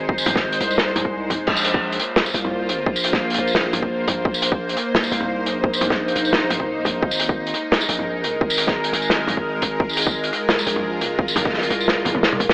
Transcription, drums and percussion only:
0.09 kick
0.18 tambourine
0.26 closed hi-hat, mid tom
0.36 kick, snare
0.52 closed hi-hat
0.61 closed hi-hat
0.71 tambourine
0.78 snare
0.96 closed hi-hat, mid tom
1.05 kick
1.30 kick, closed hi-hat, mid tom
1.47 kick, crash
1.57 tambourine
1.64 closed hi-hat
1.74 kick
1.92 closed hi-hat
2.00 closed hi-hat
2.16 snare, mid tom
2.26 tambourine
2.34 closed hi-hat
2.45 mid tom
2.69 closed hi-hat
2.86 kick
2.96 tambourine
3.04 closed hi-hat
3.13 kick, snare
3.30 closed hi-hat
3.34 closed hi-hat
3.47 tambourine
3.55 snare
3.73 closed hi-hat, mid tom
3.82 kick
4.08 kick, closed hi-hat, mid tom
4.25 kick
4.34 tambourine
4.42 closed hi-hat
4.52 kick
4.69 closed hi-hat
4.77 closed hi-hat
4.95 snare, mid tom
5.04 tambourine
5.12 closed hi-hat
5.21 mid tom
5.46 closed hi-hat
5.64 kick
5.73 tambourine
5.81 closed hi-hat, mid tom
5.90 kick, snare
6.08 closed hi-hat
6.16 closed hi-hat
6.25 tambourine
6.33 snare
6.50 closed hi-hat, mid tom
6.60 kick
6.85 kick, closed hi-hat, mid tom
7.03 kick
7.11 tambourine
7.20 closed hi-hat
7.29 kick
7.47 closed hi-hat
7.54 closed hi-hat
7.72 snare, mid tom
7.81 tambourine
7.89 closed hi-hat
7.99 mid tom
8.24 closed hi-hat
8.41 kick
8.50 tambourine
8.58 closed hi-hat
8.67 kick, snare
8.84 closed hi-hat
8.93 closed hi-hat
9.02 tambourine
9.10 snare
9.27 closed hi-hat, mid tom
9.37 kick
9.62 kick, closed hi-hat
9.80 kick
9.89 tambourine
9.93 closed hi-hat, tambourine
9.97 tambourine
10.02 tambourine
10.07 kick
10.24 closed hi-hat
10.33 closed hi-hat
10.49 snare, mid tom
10.59 tambourine
10.67 closed hi-hat
10.76 mid tom
11.01 closed hi-hat
11.19 kick
11.28 tambourine
11.36 closed hi-hat, mid tom
11.45 kick, snare
11.49 snare
11.53 snare
11.58 snare
11.63 closed hi-hat
11.71 closed hi-hat
11.81 tambourine
11.88 snare
12.05 closed hi-hat, mid tom, high tom
12.15 kick, high tom
12.23 snare
12.32 mid tom
12.40 kick, closed hi-hat, mid tom
12.49 snare

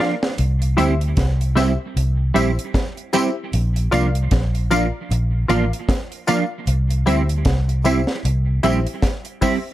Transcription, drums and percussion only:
0.00 snare
0.23 snare
0.38 closed hi-hat
0.62 closed hi-hat
0.78 closed hi-hat, tambourine
1.01 closed hi-hat
1.17 kick, snare, closed hi-hat
1.41 closed hi-hat
1.57 snare, closed hi-hat, tambourine
1.97 closed hi-hat
2.36 closed hi-hat, tambourine
2.59 closed hi-hat
2.74 kick, snare, closed hi-hat
2.97 closed hi-hat
3.13 closed hi-hat, tambourine
3.53 closed hi-hat
3.76 closed hi-hat
3.92 closed hi-hat, tambourine
4.15 closed hi-hat
4.31 kick, snare, closed hi-hat
4.55 closed hi-hat
4.71 closed hi-hat, tambourine
5.12 closed hi-hat
5.49 closed hi-hat, tambourine
5.73 closed hi-hat
5.89 kick, snare, closed hi-hat
6.12 closed hi-hat
6.28 closed hi-hat, tambourine
6.67 closed hi-hat
6.90 closed hi-hat
7.07 closed hi-hat, tambourine
7.29 closed hi-hat
7.45 kick, snare, closed hi-hat
7.69 closed hi-hat
7.85 closed hi-hat, tambourine
8.07 snare
8.25 closed hi-hat
8.63 closed hi-hat, tambourine
8.87 closed hi-hat
9.02 kick, snare, closed hi-hat
9.25 closed hi-hat
9.42 kick, open hi-hat, tambourine

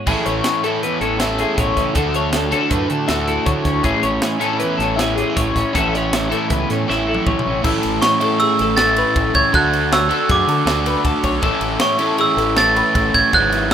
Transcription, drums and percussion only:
0.07 kick, crash
0.26 closed hi-hat
0.44 snare, closed hi-hat
0.64 closed hi-hat
0.83 closed hi-hat
1.01 closed hi-hat
1.20 snare, closed hi-hat
1.39 closed hi-hat
1.58 kick, snare, closed hi-hat
1.77 kick, snare, closed hi-hat
1.95 kick, closed hi-hat
2.14 closed hi-hat
2.33 snare, closed hi-hat
2.52 closed hi-hat
2.71 kick, closed hi-hat
2.90 closed hi-hat
3.08 snare, closed hi-hat
3.28 closed hi-hat
3.46 kick, closed hi-hat
3.65 kick, snare, closed hi-hat
3.84 kick, closed hi-hat
4.03 closed hi-hat
4.22 snare, closed hi-hat
4.41 closed hi-hat
4.60 closed hi-hat
4.80 snare, closed hi-hat
4.99 snare, closed hi-hat
5.18 closed hi-hat
5.37 kick, closed hi-hat
5.56 kick, snare, closed hi-hat
5.75 kick, closed hi-hat
5.95 snare, closed hi-hat
6.13 snare, closed hi-hat
6.32 closed hi-hat
6.50 kick, snare, closed hi-hat
6.70 snare, closed hi-hat
6.90 snare
7.14 high tom
7.27 kick, mid tom
7.39 mid tom
7.64 kick, crash
7.83 snare, ride
8.02 snare, ride
8.21 ride
8.40 ride
8.59 snare, ride
8.77 snare, ride
8.96 ride
9.16 kick, ride
9.35 kick, ride
9.54 kick, ride
9.73 ride
9.92 snare, ride
10.11 ride
10.30 kick, snare, ride
10.48 snare, ride
10.67 snare, ride
10.86 ride
11.05 kick, snare, ride
11.24 kick, ride
11.43 kick, ride
11.61 ride
11.80 snare, ride
11.99 ride
12.18 ride
12.38 snare, ride
12.56 snare, ride
12.76 ride
12.95 kick, ride
13.14 kick, snare, ride
13.33 kick, ride
13.52 snare, ride

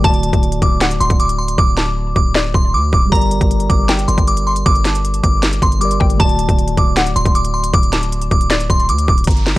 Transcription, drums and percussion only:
0.04 kick, closed hi-hat
0.14 closed hi-hat
0.23 closed hi-hat
0.33 kick, closed hi-hat
0.43 closed hi-hat
0.52 closed hi-hat
0.62 kick, closed hi-hat
0.81 snare, closed hi-hat
0.91 closed hi-hat
1.01 closed hi-hat
1.10 kick, closed hi-hat
1.20 closed hi-hat
1.29 closed hi-hat
1.48 closed hi-hat
1.58 kick
1.77 snare
2.16 kick
2.35 snare
2.54 kick
2.93 kick
3.12 kick, closed hi-hat
3.21 closed hi-hat
3.31 closed hi-hat
3.41 kick, closed hi-hat
3.51 closed hi-hat
3.60 closed hi-hat
3.70 kick, closed hi-hat
3.89 snare, closed hi-hat
3.99 closed hi-hat
4.08 closed hi-hat
4.18 kick, closed hi-hat
4.27 closed hi-hat
4.37 closed hi-hat
4.56 closed hi-hat
4.66 kick, closed hi-hat
4.75 closed hi-hat
4.85 snare, closed hi-hat
4.95 closed hi-hat
5.05 closed hi-hat
5.14 closed hi-hat
5.24 kick, closed hi-hat
5.43 snare, closed hi-hat
5.53 closed hi-hat
5.62 kick, closed hi-hat
5.72 closed hi-hat
5.81 closed hi-hat
5.91 closed hi-hat
6.01 kick
6.10 closed hi-hat
6.20 kick, closed hi-hat
6.29 closed hi-hat
6.39 closed hi-hat
6.49 kick, closed hi-hat
6.58 closed hi-hat
6.68 closed hi-hat
6.77 kick, closed hi-hat
6.96 snare, closed hi-hat
7.06 closed hi-hat
7.16 closed hi-hat
7.25 kick, closed hi-hat
7.35 closed hi-hat
7.45 closed hi-hat
7.64 closed hi-hat
7.74 kick, closed hi-hat
7.83 closed hi-hat
7.93 snare, closed hi-hat
8.03 closed hi-hat
8.12 closed hi-hat
8.21 closed hi-hat
8.31 kick, closed hi-hat
8.41 closed hi-hat
8.50 snare, closed hi-hat
8.60 closed hi-hat
8.70 kick, closed hi-hat
8.80 closed hi-hat
8.89 closed hi-hat
8.98 closed hi-hat
9.08 kick
9.18 closed hi-hat
9.24 closed hi-hat
9.27 kick, closed hi-hat
9.37 closed hi-hat
9.47 snare

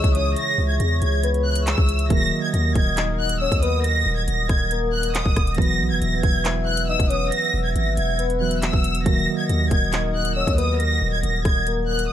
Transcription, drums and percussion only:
0.04 kick, closed hi-hat
0.15 closed hi-hat
0.36 closed hi-hat
0.80 closed hi-hat
1.02 closed hi-hat
1.23 closed hi-hat
1.34 closed hi-hat
1.55 closed hi-hat
1.67 clap, closed hi-hat
1.78 kick
1.89 closed hi-hat
1.99 closed hi-hat
2.10 kick, closed hi-hat
2.54 closed hi-hat
2.75 kick, closed hi-hat
2.97 clap, closed hi-hat
3.29 closed hi-hat
3.52 kick, closed hi-hat
3.63 closed hi-hat
3.84 closed hi-hat
4.28 closed hi-hat
4.49 kick, cross-stick, closed hi-hat
4.71 closed hi-hat
5.03 closed hi-hat
5.15 clap, closed hi-hat
5.26 kick
5.36 kick, cross-stick, closed hi-hat
5.47 closed hi-hat
5.55 kick, closed hi-hat
5.62 closed hi-hat
6.02 closed hi-hat
6.23 kick, closed hi-hat
6.45 clap, closed hi-hat
6.77 closed hi-hat
7.00 kick, closed hi-hat
7.10 closed hi-hat
7.32 closed hi-hat
7.76 closed hi-hat
7.97 closed hi-hat
8.19 closed hi-hat
8.30 closed hi-hat
8.51 closed hi-hat
8.62 clap, closed hi-hat
8.73 kick
8.84 closed hi-hat
8.95 closed hi-hat
9.06 kick, closed hi-hat
9.49 closed hi-hat
9.71 kick, closed hi-hat
9.93 clap, closed hi-hat
10.25 closed hi-hat
10.47 kick, closed hi-hat
10.58 closed hi-hat
10.80 closed hi-hat
11.23 closed hi-hat
11.45 kick, cross-stick, closed hi-hat
11.67 closed hi-hat
11.99 closed hi-hat

